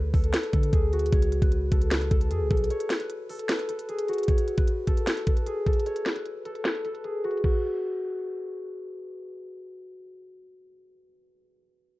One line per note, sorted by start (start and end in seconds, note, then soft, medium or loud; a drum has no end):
0.00 0.13 D2 loud
0.00 0.21 F#4 medium
0.00 0.14 A4 medium
0.00 0.33 B4 medium
0.00 1.12 C#5 loud
0.14 0.33 D2 loud
0.14 0.53 A4 medium
0.14 kick medium
0.14 open hi-hat medium
0.24 closed hi-hat medium
0.34 1.42 B4 medium
0.34 snare loud
0.34 closed hi-hat medium
0.43 closed hi-hat medium
0.53 0.72 D3 loud
0.53 0.79 A4 medium
0.53 kick loud
0.53 closed hi-hat medium
0.63 closed hi-hat medium
0.73 1.11 D2 loud
0.73 1.78 G#4 medium
0.73 kick loud
0.73 closed hi-hat medium
0.93 3.36 F#4 medium
0.93 closed hi-hat soft
0.99 closed hi-hat soft
1.06 closed hi-hat medium
1.12 1.41 C#2 loud
1.12 2.70 C#5 loud
1.12 kick loud
1.12 closed hi-hat medium
1.22 closed hi-hat medium
1.32 closed hi-hat medium
1.42 1.70 C#2 loud
1.42 1.91 B4 medium
1.42 kick loud
1.42 closed hi-hat medium
1.52 closed hi-hat medium
1.72 2.10 C#2 loud
1.72 2.11 A4 medium
1.72 kick medium
1.72 closed hi-hat medium
1.82 closed hi-hat medium
1.91 3.00 B4 medium
1.91 snare loud
1.91 closed hi-hat medium
2.01 closed hi-hat medium
2.11 2.32 C#2 loud
2.11 2.37 A4 medium
2.11 kick loud
2.11 closed hi-hat medium
2.21 closed hi-hat medium
2.31 2.42 F2 loud
2.31 2.57 G#4 medium
2.31 closed hi-hat medium
2.41 2.50 C#2 loud
2.51 2.70 B1 loud
2.51 3.29 A4 medium
2.51 kick loud
2.51 closed hi-hat soft
2.57 closed hi-hat soft
2.64 closed hi-hat medium
2.70 4.28 C#5 loud
2.70 closed hi-hat medium
2.80 closed hi-hat medium
2.90 snare loud
2.90 closed hi-hat medium
3.00 3.49 B4 medium
3.00 closed hi-hat medium
3.10 closed hi-hat medium
3.29 3.69 A4 medium
3.29 open hi-hat medium
3.39 closed hi-hat medium
3.49 4.57 B4 medium
3.49 snare loud
3.49 closed hi-hat medium
3.59 closed hi-hat medium
3.69 3.95 A4 medium
3.69 closed hi-hat medium
3.79 closed hi-hat medium
3.89 4.94 G#4 medium
3.89 closed hi-hat soft
3.99 closed hi-hat medium
4.08 6.52 F#4 medium
4.08 closed hi-hat soft
4.13 closed hi-hat soft
4.18 closed hi-hat soft
4.23 closed hi-hat medium
4.28 5.86 C#5 medium
4.28 kick loud
4.28 closed hi-hat medium
4.38 closed hi-hat medium
4.48 closed hi-hat medium
4.58 5.07 B4 medium
4.58 kick loud
4.58 closed hi-hat medium
4.68 closed hi-hat medium
4.87 5.27 A4 medium
4.87 kick medium
4.87 closed hi-hat medium
4.97 closed hi-hat medium
5.07 6.15 B4 medium
5.07 snare loud
5.07 closed hi-hat medium
5.17 closed hi-hat medium
5.27 5.52 A4 medium
5.27 kick loud
5.27 closed hi-hat medium
5.37 closed hi-hat medium
5.46 5.72 G#4 medium
5.46 closed hi-hat medium
5.66 6.45 A4 medium
5.66 kick medium
5.66 closed hi-hat soft
5.73 closed hi-hat soft
5.80 closed hi-hat medium
5.86 7.77 C#5 loud
5.86 closed hi-hat medium
5.96 closed hi-hat medium
6.06 snare medium
6.06 closed hi-hat medium
6.16 6.65 B4 medium
6.16 closed hi-hat medium
6.26 closed hi-hat medium
6.45 6.84 A4 medium
6.45 closed hi-hat medium
6.55 closed hi-hat medium
6.65 8.70 B4 medium
6.65 snare loud
6.65 closed hi-hat medium
6.75 closed hi-hat medium
6.85 7.10 A4 medium
6.85 closed hi-hat medium
6.95 closed hi-hat medium
7.04 9.32 G#4 medium
7.04 closed hi-hat medium
7.24 7.44 F#4 medium
7.24 closed hi-hat soft
7.31 closed hi-hat soft
7.37 closed hi-hat medium
7.44 9.88 F#4 medium
7.44 kick loud
7.44 crash medium